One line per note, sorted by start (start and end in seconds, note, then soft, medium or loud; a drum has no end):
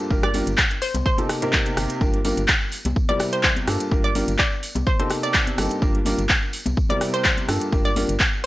0.10 0.42 G1 loud
0.10 0.25 G2 loud
0.10 0.25 A#3 medium
0.10 0.25 D4 medium
0.10 0.25 F4 medium
0.10 0.25 G4 medium
0.10 0.25 A#4 loud
0.10 kick loud
0.10 tambourine medium
0.23 0.37 D5 medium
0.23 cross-stick medium
0.23 closed hi-hat soft
0.34 0.49 G2 medium
0.34 0.49 A#3 medium
0.34 0.49 D4 medium
0.34 0.49 F4 medium
0.34 0.49 G4 medium
0.34 0.49 A#4 medium
0.34 open hi-hat loud
0.34 tambourine medium
0.34 high conga medium
0.47 0.56 G1 medium
0.47 closed hi-hat medium
0.47 tambourine soft
0.58 kick loud
0.58 clap loud
0.58 tambourine soft
0.71 closed hi-hat soft
0.71 tambourine soft
0.82 0.97 C5 loud
0.82 open hi-hat loud
0.82 tambourine medium
0.94 1.03 C2 medium
0.94 closed hi-hat medium
0.94 tambourine soft
0.94 high conga medium
1.06 1.73 C5 medium
1.06 kick loud
1.06 tambourine soft
1.18 1.40 C3 medium
1.18 1.40 A#3 medium
1.18 1.40 C4 medium
1.18 1.40 D#4 medium
1.18 1.40 G4 medium
1.18 1.40 A4 medium
1.18 closed hi-hat medium
1.18 tambourine soft
1.18 high conga medium
1.29 cross-stick medium
1.29 open hi-hat loud
1.29 tambourine medium
1.42 1.98 C3 loud
1.42 1.98 A#3 medium
1.42 1.98 C4 medium
1.42 1.98 D#4 medium
1.42 1.98 G4 medium
1.42 1.98 A#4 loud
1.42 closed hi-hat medium
1.42 tambourine soft
1.53 kick loud
1.53 clap loud
1.53 tambourine medium
1.66 closed hi-hat medium
1.66 tambourine soft
1.66 high conga medium
1.77 1.87 G1 medium
1.77 cross-stick medium
1.77 open hi-hat loud
1.77 tambourine loud
1.90 closed hi-hat medium
1.90 tambourine soft
2.01 2.33 G1 loud
2.01 2.16 G2 medium
2.01 2.16 A#3 medium
2.01 2.16 D4 medium
2.01 2.16 F4 medium
2.01 2.16 G4 medium
2.01 2.16 A#4 loud
2.01 kick loud
2.01 tambourine medium
2.14 closed hi-hat soft
2.25 2.40 G2 medium
2.25 2.40 A#3 medium
2.25 2.40 D4 medium
2.25 2.40 F4 medium
2.25 2.40 G4 medium
2.25 2.40 A#4 medium
2.25 open hi-hat loud
2.25 tambourine loud
2.25 high conga medium
2.37 2.46 G1 medium
2.37 closed hi-hat medium
2.37 tambourine soft
2.48 kick loud
2.48 clap loud
2.48 tambourine soft
2.61 tambourine soft
2.72 open hi-hat loud
2.72 tambourine loud
2.85 2.94 C2 medium
2.85 closed hi-hat medium
2.85 tambourine soft
2.85 high conga loud
2.96 kick loud
2.96 tambourine medium
3.09 3.65 C3 medium
3.09 3.65 G3 medium
3.09 3.65 C4 medium
3.09 3.65 E4 medium
3.09 3.65 G4 medium
3.09 3.65 A#4 medium
3.09 3.23 D5 loud
3.09 closed hi-hat medium
3.09 high conga medium
3.19 cross-stick medium
3.19 open hi-hat loud
3.19 tambourine medium
3.32 3.40 C5 medium
3.32 closed hi-hat medium
3.32 tambourine soft
3.43 3.52 C5 medium
3.43 kick loud
3.43 clap loud
3.43 tambourine medium
3.56 closed hi-hat medium
3.56 tambourine soft
3.56 high conga medium
3.67 3.77 G2 medium
3.67 3.88 G2 medium
3.67 3.88 A#3 medium
3.67 3.88 D4 medium
3.67 3.88 F4 medium
3.67 3.88 G4 medium
3.67 3.88 A4 medium
3.67 cross-stick medium
3.67 open hi-hat loud
3.67 tambourine medium
3.80 closed hi-hat medium
3.80 tambourine soft
3.91 4.23 G1 loud
3.91 4.06 G2 loud
3.91 4.06 A#3 medium
3.91 4.06 D4 medium
3.91 4.06 F4 medium
3.91 4.06 G4 medium
3.91 4.06 A#4 loud
3.91 kick loud
3.91 tambourine medium
4.04 4.18 D5 medium
4.04 closed hi-hat soft
4.15 4.30 G2 medium
4.15 4.30 A#3 medium
4.15 4.30 D4 medium
4.15 4.30 F4 medium
4.15 4.30 G4 medium
4.15 4.30 A#4 medium
4.15 open hi-hat loud
4.15 tambourine loud
4.15 high conga medium
4.28 4.37 G1 medium
4.28 closed hi-hat medium
4.28 tambourine soft
4.39 4.54 D5 medium
4.39 kick loud
4.39 clap loud
4.39 tambourine medium
4.52 tambourine soft
4.63 open hi-hat loud
4.63 tambourine loud
4.75 4.84 C2 medium
4.75 closed hi-hat medium
4.75 tambourine soft
4.75 high conga loud
4.87 4.95 C5 medium
4.87 kick loud
4.87 tambourine medium
4.99 5.55 C3 medium
4.99 5.55 A#3 medium
4.99 5.55 C4 medium
4.99 5.55 D#4 medium
4.99 5.55 G4 medium
4.99 5.55 A4 medium
4.99 5.07 C5 medium
4.99 closed hi-hat medium
4.99 high conga medium
5.10 cross-stick medium
5.10 open hi-hat loud
5.10 tambourine medium
5.23 5.58 D5 loud
5.23 closed hi-hat medium
5.23 tambourine soft
5.34 kick loud
5.34 clap loud
5.34 tambourine medium
5.47 closed hi-hat medium
5.47 tambourine soft
5.47 high conga medium
5.58 5.68 G1 medium
5.58 5.79 G2 medium
5.58 5.79 A#3 medium
5.58 5.79 C4 medium
5.58 5.79 D#4 medium
5.58 5.79 G4 medium
5.58 5.79 A4 medium
5.58 cross-stick medium
5.58 open hi-hat loud
5.58 tambourine loud
5.70 closed hi-hat medium
5.70 tambourine soft
5.82 6.14 G1 loud
5.82 5.97 G2 loud
5.82 5.97 A#3 medium
5.82 5.97 D4 medium
5.82 5.97 F4 medium
5.82 5.97 G4 medium
5.82 5.97 A#4 loud
5.82 kick loud
5.82 tambourine medium
5.95 closed hi-hat soft
6.05 6.21 G2 medium
6.05 6.21 A#3 medium
6.05 6.21 D4 medium
6.05 6.21 F4 medium
6.05 6.21 G4 medium
6.05 6.21 A#4 loud
6.05 open hi-hat loud
6.05 tambourine loud
6.05 high conga medium
6.18 6.27 G1 medium
6.18 closed hi-hat medium
6.18 tambourine soft
6.29 kick loud
6.29 clap loud
6.29 tambourine medium
6.42 tambourine soft
6.53 open hi-hat loud
6.53 tambourine loud
6.66 6.75 C2 medium
6.66 closed hi-hat medium
6.66 tambourine soft
6.66 high conga loud
6.77 kick loud
6.77 tambourine medium
6.89 7.46 C3 medium
6.89 7.46 G3 medium
6.89 7.46 C4 medium
6.89 7.46 E4 medium
6.89 7.46 G4 medium
6.89 7.46 A#4 medium
6.89 7.04 D5 medium
6.89 closed hi-hat medium
6.89 high conga medium
7.01 cross-stick medium
7.01 open hi-hat loud
7.01 tambourine medium
7.13 7.21 C5 loud
7.13 closed hi-hat medium
7.13 tambourine soft
7.24 7.33 C5 medium
7.24 kick loud
7.24 clap loud
7.24 tambourine medium
7.37 closed hi-hat medium
7.37 tambourine soft
7.37 high conga medium
7.49 7.69 G2 medium
7.49 7.58 G2 medium
7.49 7.69 A#3 medium
7.49 7.69 D4 medium
7.49 7.69 F4 medium
7.49 7.69 G4 medium
7.49 7.69 A4 medium
7.49 cross-stick medium
7.49 open hi-hat loud
7.49 tambourine loud
7.61 closed hi-hat medium
7.61 tambourine soft
7.72 8.04 G1 loud
7.72 7.87 G2 loud
7.72 7.87 A#3 medium
7.72 7.87 D4 medium
7.72 7.87 F4 medium
7.72 7.87 G4 medium
7.72 7.87 A#4 loud
7.72 kick loud
7.72 tambourine medium
7.85 7.99 D5 medium
7.85 closed hi-hat soft
7.85 tambourine soft
7.96 8.11 G2 medium
7.96 8.11 A#3 medium
7.96 8.11 D4 medium
7.96 8.11 F4 medium
7.96 8.11 G4 medium
7.96 8.11 A#4 medium
7.96 open hi-hat loud
7.96 tambourine medium
7.96 high conga medium
8.09 8.17 G1 medium
8.09 closed hi-hat medium
8.09 tambourine soft
8.20 kick loud
8.20 clap loud
8.20 tambourine medium
8.33 tambourine soft